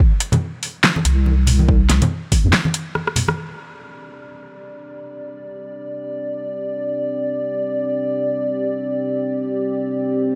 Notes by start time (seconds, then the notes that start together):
0.20 closed hi-hat
0.32 closed hi-hat, high conga, low conga
0.63 open hi-hat
0.84 snare, clap
0.96 high conga
1.05 C2, closed hi-hat
1.26 high conga
1.47 open hi-hat, low conga
1.59 high conga
1.69 kick
1.90 snare, closed hi-hat
2.02 closed hi-hat, high conga, low conga
2.32 kick, open hi-hat, high conga
2.44 F2
2.53 snare, clap
2.65 high conga
2.74 closed hi-hat
2.95 cross-stick, high conga
3.07 cross-stick
3.16 open hi-hat, low conga
3.28 cross-stick, high conga
3.37 C4 G4 D5
10.13 C5